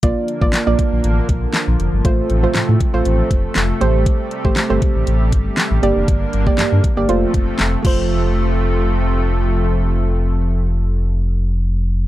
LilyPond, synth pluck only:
\new Staff \with { instrumentName = "Synth pluck" } { \time 4/4 \key f \major \tempo 4 = 119 <bes f' d''>8 r16 <bes f' d''>16 r16 <bes f' d''>4~ <bes f' d''>16 r4. | <a f' c''>8 r16 <a f' c''>8 r8 <a f' c''>4~ <a f' c''>16 r8 <a g' c''>8~ | <a g' c''>8 r16 <a g' c''>16 r16 <a g' c''>4~ <a g' c''>16 r4 <bes g' d''>8~ | <bes g' d''>8 r16 <bes g' d''>8 r8 <bes g' d''>16 <a f' c''>4. <a f' c''>8~ |
<a f' c''>1~ | <a f' c''>1 | }